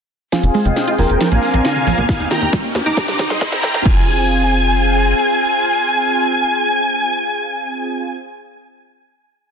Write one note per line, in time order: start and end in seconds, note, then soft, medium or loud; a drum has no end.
0.32 0.40 F3 medium
0.32 2.07 C4 medium
0.32 1.20 F4 medium
0.32 1.20 G#4 medium
0.32 0.62 F5 medium
0.32 0.62 G#5 loud
0.32 snare soft
0.32 closed hi-hat loud
0.32 riser medium
0.43 0.50 F1 medium
0.43 closed hi-hat soft
0.54 0.60 G#3 loud
0.54 open hi-hat loud
0.65 0.72 F1 medium
0.65 0.69 C4 medium
0.65 0.95 D#5 medium
0.65 0.95 G5 medium
0.65 closed hi-hat medium
0.65 mid tom medium
0.76 snare medium
0.76 closed hi-hat loud
0.87 0.95 F4 loud
0.87 closed hi-hat medium
0.98 1.05 F1 loud
0.98 1.06 F3 medium
0.98 1.28 A#4 medium
0.98 1.28 G5 loud
0.98 open hi-hat loud
1.10 1.16 F1 medium
1.10 closed hi-hat medium
1.21 1.26 F3 loud
1.21 2.08 D4 medium
1.21 2.08 A#4 medium
1.21 snare medium
1.21 closed hi-hat loud
1.31 1.38 A#1 medium
1.31 1.35 A#3 medium
1.31 1.61 F5 medium
1.31 1.61 G#5 medium
1.31 closed hi-hat medium
1.43 open hi-hat loud
1.54 1.60 A#1 medium
1.54 1.62 C4 loud
1.54 closed hi-hat medium
1.65 1.73 D3 medium
1.65 2.04 F5 medium
1.65 2.04 G#5 loud
1.65 snare medium
1.65 closed hi-hat medium
1.76 closed hi-hat medium
1.76 mid tom medium
1.87 1.93 A#1 loud
1.87 1.92 F3 loud
1.87 open hi-hat loud
1.98 2.04 A#1 medium
1.98 2.01 A#3 medium
1.98 closed hi-hat medium
1.98 mid tom medium
2.09 2.96 A#3 medium
2.09 3.84 D#4 medium
2.09 3.84 G4 medium
2.09 2.29 F5 medium
2.09 2.29 G#5 medium
2.09 kick loud
2.09 snare medium
2.09 closed hi-hat medium
2.20 2.27 D#2 medium
2.20 2.28 D#4 loud
2.20 closed hi-hat soft
2.31 2.39 D#3 medium
2.31 2.51 G5 medium
2.31 2.51 A#5 medium
2.31 snare medium
2.31 open hi-hat loud
2.42 2.49 D#2 medium
2.42 closed hi-hat medium
2.42 mid tom medium
2.53 2.58 G3 loud
2.53 kick loud
2.53 snare medium
2.53 closed hi-hat medium
2.64 2.67 A#3 medium
2.64 closed hi-hat medium
2.75 2.82 D#2 loud
2.75 snare medium
2.75 open hi-hat loud
2.86 2.93 D#2 medium
2.86 2.94 D#4 loud
2.86 3.06 A#5 medium
2.86 3.06 D6 medium
2.86 closed hi-hat medium
2.97 3.85 C3 medium
2.97 3.05 D3 medium
2.97 3.84 C4 medium
2.97 3.85 D4 medium
2.97 kick loud
2.97 snare loud
2.97 closed hi-hat loud
3.08 3.15 C2 medium
3.08 3.28 A#5 medium
3.08 3.28 D6 medium
3.08 snare medium
3.08 closed hi-hat medium
3.19 3.24 D#3 loud
3.19 kick medium
3.19 snare loud
3.19 open hi-hat loud
3.30 3.37 C2 medium
3.30 3.33 G3 medium
3.30 3.50 D#5 medium
3.30 3.50 C6 loud
3.30 snare medium
3.30 closed hi-hat medium
3.41 kick loud
3.41 snare loud
3.41 closed hi-hat loud
3.52 3.60 C4 loud
3.52 3.82 G5 medium
3.52 3.82 A#5 medium
3.52 snare medium
3.52 closed hi-hat medium
3.63 3.70 C2 medium
3.63 3.71 D3 medium
3.63 snare loud
3.63 open hi-hat loud
3.74 3.81 C2 medium
3.74 snare loud
3.74 closed hi-hat medium
3.85 5.14 F1 loud
3.85 4.06 F3 medium
3.85 8.14 C4 medium
3.85 8.14 F4 medium
3.85 8.14 G#4 loud
3.85 8.14 G#5 loud
3.85 kick loud
3.85 crash medium